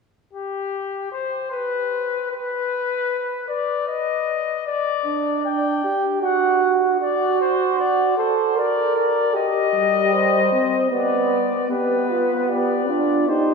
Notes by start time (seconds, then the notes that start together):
0.33 G4
1.12 C5
1.52 B4
2.31 B4
3.48 D5
3.87 D#5
4.66 D5
5.06 D4
5.45 G5
5.84 G4
6.22 F#4 F#5
7.00 F#4 D5
7.41 C5
7.79 D5
8.17 A4 C5
8.56 A#4 D5
8.96 D5
9.34 G4 D#5
9.74 G3
10.12 C5
10.52 C4
10.91 B3 B4 D5
11.71 B3 G4 B4
12.10 F4
12.48 G4 D5
12.89 D4 F4
13.28 D#4 G4 C5